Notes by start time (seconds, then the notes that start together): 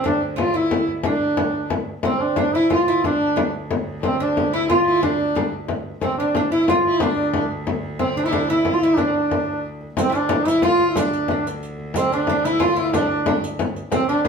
Already playing: D2
0.04 D4, frame drum
0.21 frame drum
0.36 F4, frame drum
0.54 E4
0.71 frame drum
0.87 frame drum
1.03 D4, frame drum
1.37 frame drum
1.54 frame drum
1.70 frame drum
2.03 D2 C4, frame drum
2.21 D4
2.36 D4, frame drum
2.54 E4, frame drum
2.70 F4, frame drum
2.88 E4, frame drum
3.04 D4, frame drum
3.36 D4, frame drum
3.54 frame drum
3.71 frame drum
3.87 frame drum
4.00 D4, frame drum
4.04 C4
4.20 D4
4.37 frame drum
4.53 E4, frame drum
4.69 F4, frame drum
4.86 E4, frame drum
5.03 D4, frame drum
5.35 D4, frame drum
5.68 frame drum
6.01 D2 C4, frame drum
6.18 D4
6.35 D4, frame drum
6.51 E4, frame drum
6.68 F4, frame drum
6.85 E4, frame drum
7.00 D4, frame drum
7.34 D4, frame drum
7.51 frame drum
7.67 frame drum
7.83 frame drum
7.99 C4, frame drum
8.17 D4
8.25 E4
8.32 D4, frame drum
8.49 E4, frame drum
8.65 frame drum
8.73 F4
8.80 E4, frame drum
8.96 D4, frame drum
9.01 D4
9.07 C4
9.14 D4
9.31 frame drum
9.81 frame drum
9.97 D2 C4, riq, frame drum
10.09 D4 E4
10.15 D4, riq
10.29 D4, frame drum
10.45 E4, riq, frame drum
10.62 F4, riq, frame drum
10.79 frame drum
10.89 E4
10.96 D4, riq, frame drum
11.13 riq
11.28 D4, frame drum
11.45 riq, frame drum
11.63 riq
11.78 frame drum
11.94 C4, riq, frame drum
11.99 C4
12.11 D4, riq
12.27 D4, frame drum
12.44 E4, riq, frame drum
12.60 F4, riq, frame drum
12.76 E4, frame drum
12.93 D4, riq, frame drum
13.01 C4
13.06 D4, frame drum
13.26 D4, frame drum
13.43 riq, frame drum
13.59 riq, frame drum
13.76 riq
13.91 D2 C4, riq, frame drum
14.08 D4, riq
14.25 D4, frame drum